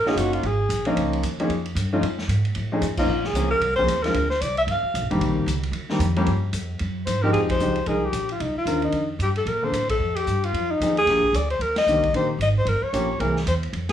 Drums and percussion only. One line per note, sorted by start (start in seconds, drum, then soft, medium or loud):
0.06 snare soft
0.17 hi-hat pedal medium
0.17 ride medium
0.33 ride soft
0.43 ride soft
0.70 hi-hat pedal medium
0.70 ride medium
0.85 ride soft
0.97 ride medium
1.13 ride soft
1.23 hi-hat pedal medium
1.23 ride medium
1.40 ride soft
1.50 ride soft
1.66 ride soft
1.76 hi-hat pedal medium
1.76 ride medium
2.03 ride medium
2.18 snare medium
2.29 hi-hat pedal medium
2.29 ride medium
2.45 ride soft
2.55 ride medium
2.82 hi-hat pedal medium
2.82 ride medium
2.97 kick medium
2.97 crash medium
3.24 snare soft
3.35 hi-hat pedal medium
3.35 ride medium
3.61 ride medium
3.77 kick medium
3.88 hi-hat pedal medium
3.88 ride medium
4.04 snare soft
4.04 ride soft
4.14 ride medium
4.30 snare soft
4.41 hi-hat pedal medium
4.41 ride medium
4.57 ride soft
4.68 ride medium
4.95 hi-hat pedal medium
4.95 ride medium
5.11 ride soft
5.21 ride medium
5.48 hi-hat pedal medium
5.48 ride medium
5.63 ride soft
5.73 ride medium
5.89 snare medium
6.00 hi-hat pedal soft
6.00 ride medium
6.16 ride soft
6.26 ride medium
6.53 hi-hat pedal medium
6.53 ride medium
6.79 ride medium
7.07 hi-hat pedal medium
7.07 ride medium
7.34 ride medium
7.49 kick medium
7.49 ride medium
7.60 hi-hat pedal soft
7.76 ride soft
7.86 ride soft
8.13 hi-hat pedal medium
8.13 ride medium
8.29 ride soft
8.40 ride medium
8.67 hi-hat pedal soft
8.67 ride medium
8.82 ride soft
8.92 ride medium
9.20 hi-hat pedal medium
9.20 ride medium
9.36 ride soft
9.46 ride medium
9.73 hi-hat pedal medium
9.73 ride medium
9.89 kick medium
9.89 ride medium
10.16 ride medium
10.27 hi-hat pedal medium
10.44 ride soft
10.54 ride medium
10.81 hi-hat pedal soft
10.81 ride medium
10.97 ride soft
11.07 snare soft
11.07 ride soft
11.23 kick soft
11.34 hi-hat pedal soft
11.34 ride medium
11.50 ride soft
11.61 ride medium
11.76 snare medium
11.76 ride medium
11.87 hi-hat pedal soft
12.03 kick soft
12.03 ride soft
12.14 ride medium
12.41 hi-hat pedal soft
12.41 ride medium
12.67 ride medium
12.94 hi-hat pedal medium
12.94 ride medium
13.20 ride soft
13.36 snare soft
13.47 hi-hat pedal soft
13.47 ride medium
13.63 ride soft
13.73 ride medium
13.89 snare medium
13.89 ride medium